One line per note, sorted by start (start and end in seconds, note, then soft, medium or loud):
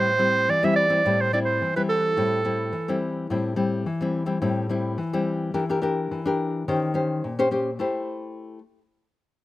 0.00 0.46 A2 medium
0.00 0.52 C5 loud
0.19 0.58 G3 medium
0.19 0.58 C4 medium
0.19 0.58 E4 medium
0.49 1.03 E3 medium
0.49 0.66 D5 loud
0.63 0.87 G3 medium
0.63 0.87 C4 medium
0.63 0.87 E4 medium
0.63 0.75 E5 medium
0.76 1.22 D5 loud
0.89 1.04 G3 medium
0.89 1.04 C4 medium
0.89 1.05 E4 medium
1.05 1.59 A2 medium
1.05 1.29 G3 medium
1.05 1.29 C4 medium
1.05 1.30 E4 medium
1.21 1.33 C5 medium
1.33 1.71 G3 medium
1.33 1.71 C4 medium
1.33 1.71 E4 medium
1.33 1.40 D5 medium
1.45 1.72 C5 medium
1.62 2.15 E3 medium
1.76 2.14 G3 medium
1.76 2.14 C4 medium
1.76 2.14 E4 medium
1.76 1.82 B4 medium
1.89 2.98 A4 medium
2.17 2.71 A2 medium
2.17 2.41 G3 medium
2.17 2.41 C4 medium
2.17 2.41 E4 medium
2.45 2.72 G3 medium
2.45 2.72 C4 medium
2.45 2.72 E4 medium
2.72 3.27 E3 medium
2.88 3.26 G3 medium
2.88 3.26 C4 medium
2.88 3.26 E4 medium
3.30 3.84 A2 medium
3.30 3.54 G3 soft
3.30 3.54 C4 medium
3.30 3.54 E4 medium
3.56 3.84 G3 medium
3.56 3.84 C4 medium
3.56 3.84 E4 medium
3.86 4.40 E3 medium
4.01 4.24 G3 medium
4.01 4.25 C4 medium
4.01 4.25 E4 medium
4.26 4.37 G3 medium
4.26 4.37 C4 medium
4.26 4.37 E4 medium
4.42 4.96 A2 medium
4.42 4.66 G3 medium
4.42 4.66 C4 medium
4.42 4.66 E4 medium
4.69 4.97 G3 medium
4.69 4.97 C4 medium
4.69 4.97 E4 medium
4.98 5.52 E3 medium
5.13 5.51 G3 medium
5.13 5.51 C4 medium
5.13 5.51 E4 medium
5.54 6.08 E3 medium
5.54 5.63 D4 medium
5.54 5.63 G4 medium
5.54 5.63 A#4 medium
5.69 5.79 D4 medium
5.69 5.79 G4 medium
5.69 5.79 A#4 medium
5.82 6.20 D4 medium
5.82 6.20 G4 medium
5.82 6.21 A#4 medium
6.11 6.65 E3 medium
6.26 6.63 D4 medium
6.26 6.64 G4 medium
6.26 6.64 A#4 medium
6.68 7.21 D#3 medium
6.68 6.91 C#4 medium
6.68 6.92 G4 medium
6.68 6.92 C5 medium
6.94 7.32 C#4 medium
6.94 7.33 G4 medium
6.94 7.33 C5 medium
7.24 7.77 A#2 medium
7.39 7.48 C#4 medium
7.39 7.48 G4 medium
7.39 7.48 C5 medium
7.51 7.70 C#4 medium
7.51 7.70 G4 medium
7.51 7.70 C5 medium
7.79 8.58 A3 medium
7.79 8.58 E4 medium
7.79 8.58 G4 medium
7.79 8.58 C5 medium